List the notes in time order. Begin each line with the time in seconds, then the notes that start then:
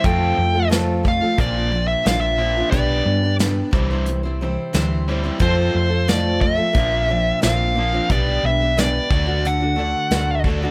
0.04 F2 F3 A3 C4 F4 A4 G5, kick, closed hi-hat
0.38 F2 F3 A3
0.54 A3 C4 F4 A4
0.69 F2 F3 A3 C4 F4 A4, snare, closed hi-hat
1.03 F3 A3 C4 F4 A4, kick
1.08 F5
1.21 A3 C4 F4 A4
1.38 A#1 A#2 F3 A#3 C4 D4 F4 D5, kick, closed hi-hat
1.55 C4 D4 F4
1.71 A#2 F3 A#3 C4 D4 F4
1.88 E5
2.05 A#1 A#2 F3 A#3 C4 D4 F4 F5, snare, closed hi-hat
2.21 E5
2.38 A#2 F3 A#3 C4 D4
2.42 F4
2.57 C4 D4 F4
2.71 B1 B3 D4 G4 B4 D5, kick, closed hi-hat
3.05 G2 B3 D4
3.23 D4 G4 B4
3.39 B3 D4 G4 B4, snare, closed hi-hat
3.71 C2 C3 E3 G3 C4 E4, kick
3.75 C5
3.90 G3 C4 E4 C5
4.06 C3 E3, closed hi-hat
4.23 G3 C4 E4 C5
4.41 C3 E3 G3 C4 E4 C5
4.73 D2 C3 E3 G3 C4 E4 C5, snare, closed hi-hat
5.08 C3 E3 G3 C4 E4 C5
5.24 G3 C4 E4 C5
5.39 F2 F3 A3 C4 F4 A4 C5, kick, closed hi-hat
5.74 F2 F3 A3
5.89 A3 C4 F4 A4
6.07 F2 F3 A3 C4 F4 A4 D5, snare, closed hi-hat
6.39 A3 C4 F4 A4 E5, kick
6.43 F3 A3
6.57 A3 C4 F4 A4
6.73 A#1 A#2 F3 A#3 C4 D4 F4, kick, closed hi-hat
6.77 A#3
6.90 C4 D4 F4
7.08 A#2 A#3 C4 D4 F4
7.12 F3
7.40 A#1 A#2 A#3 C4 D4 F4 F5, snare, closed hi-hat
7.45 A#2 F3
7.74 A#3 C4 D4 F4
7.79 A#2 F3 A#3
7.92 C4 D4 F4
8.10 B1 B3 D4 G4 B4 D5, kick, closed hi-hat
8.43 B1 B3 D4 E5
8.60 D4 G4 B4
8.77 B3 D4 G4 B4 D5, snare, closed hi-hat
9.11 D2 D3 A3 D4 F#4 D5, kick
9.25 A3 D4 F#4 D5
9.45 D3 D4 F#5, closed hi-hat
9.60 A3 D4 F#4 D5
9.76 D3 A3 D4 F#4 D5
10.10 D2 D3 F#3 A3 D4 F#4 D5, snare, closed hi-hat
10.44 D3 A3 D4 F#4, kick
10.49 F#4 D5
10.62 A3 D4 F#4 D5